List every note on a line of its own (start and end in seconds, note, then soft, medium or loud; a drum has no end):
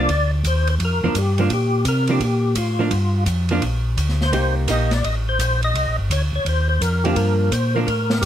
0.00 0.31 D5 loud
0.08 0.43 D2 medium
0.08 kick soft
0.08 ride medium
0.44 0.79 D#2 medium
0.44 0.69 C5 medium
0.44 kick soft
0.44 hi-hat pedal medium
0.44 ride medium
0.67 0.75 C5 medium
0.67 ride soft
0.80 1.01 F2 medium
0.80 kick soft
0.80 ride medium
0.85 1.19 A#4 medium
1.03 1.09 F2 soft
1.03 1.15 F3 medium
1.03 1.15 A#3 medium
1.03 1.16 D4 medium
1.14 1.49 G2 medium
1.14 1.40 G4 medium
1.14 kick soft
1.14 hi-hat pedal medium
1.14 ride medium
1.38 1.50 F3 medium
1.38 1.50 A#3 medium
1.38 1.51 D4 medium
1.38 1.52 F4 medium
1.38 ride soft
1.50 1.85 A#2 medium
1.50 1.85 G4 medium
1.50 kick soft
1.50 ride medium
1.85 2.20 C3 medium
1.85 2.11 A#4 medium
1.85 kick soft
1.85 hi-hat pedal medium
1.85 ride medium
2.07 2.20 F3 medium
2.07 2.21 A#3 medium
2.07 2.21 D4 medium
2.07 ride soft
2.12 2.22 G4 medium
2.20 2.55 A#2 medium
2.20 2.56 G4 medium
2.20 kick soft
2.20 ride medium
2.55 2.91 A2 medium
2.55 3.24 F4 medium
2.55 kick soft
2.55 hi-hat pedal medium
2.55 ride medium
2.79 2.91 F3 medium
2.79 2.91 A#3 medium
2.79 2.92 D4 medium
2.91 3.26 G2 medium
2.91 kick soft
2.91 ride medium
3.26 3.61 F2 medium
3.26 kick soft
3.26 hi-hat pedal medium
3.26 ride medium
3.49 3.62 F3 medium
3.49 3.62 A#3 medium
3.49 3.63 D4 medium
3.49 ride soft
3.62 3.97 A#1 medium
3.62 kick soft
3.62 ride medium
3.97 4.32 D2 medium
3.97 kick soft
3.97 hi-hat pedal soft
3.97 ride medium
4.09 snare soft
4.21 4.55 C5 medium
4.21 snare soft
4.32 4.67 C2 medium
4.32 4.67 A#3 medium
4.32 4.68 D#4 medium
4.32 4.68 G4 medium
4.32 kick soft
4.32 ride medium
4.68 5.03 A#1 medium
4.68 4.89 A#3 medium
4.68 4.90 D#4 medium
4.68 4.90 G4 medium
4.68 4.94 D#5 medium
4.68 kick soft
4.68 hi-hat pedal medium
4.68 ride medium
4.91 5.04 D5 medium
4.91 snare soft
4.91 ride soft
5.04 5.38 A1 medium
5.04 5.15 D#5 loud
5.04 kick soft
5.04 ride medium
5.29 5.61 C5 loud
5.39 5.74 A#1 medium
5.39 kick soft
5.39 hi-hat pedal medium
5.39 ride medium
5.63 5.97 D#5 medium
5.63 ride soft
5.74 5.86 C2 medium
5.74 kick soft
5.74 ride medium
5.86 5.99 A#1 medium
5.99 6.10 G1 medium
6.10 6.32 D2 medium
6.10 6.22 C#5 medium
6.10 kick soft
6.10 hi-hat pedal medium
6.10 ride medium
6.33 6.39 D2 soft
6.33 6.47 C#5 medium
6.45 6.80 D#2 medium
6.45 6.68 C5 medium
6.45 kick soft
6.45 ride medium
6.69 6.82 C5 medium
6.81 7.15 F2 medium
6.81 7.05 A#4 medium
6.81 kick soft
6.81 hi-hat pedal medium
6.81 ride medium
7.04 7.50 F3 medium
7.04 7.50 A#3 medium
7.04 7.51 D4 medium
7.04 7.16 G4 medium
7.04 ride soft
7.16 7.51 G2 medium
7.16 7.53 A#4 medium
7.16 kick soft
7.16 ride medium
7.52 7.86 A#2 medium
7.52 7.76 C5 medium
7.52 kick soft
7.52 hi-hat pedal medium
7.52 ride medium
7.75 7.87 F3 medium
7.75 7.87 A#3 medium
7.75 7.87 D4 medium
7.75 7.80 A#4 medium
7.87 8.21 A2 medium
7.87 8.23 A#4 medium
7.87 kick soft
7.87 ride medium
8.10 snare medium
8.21 8.25 G2 medium
8.21 8.25 G4 medium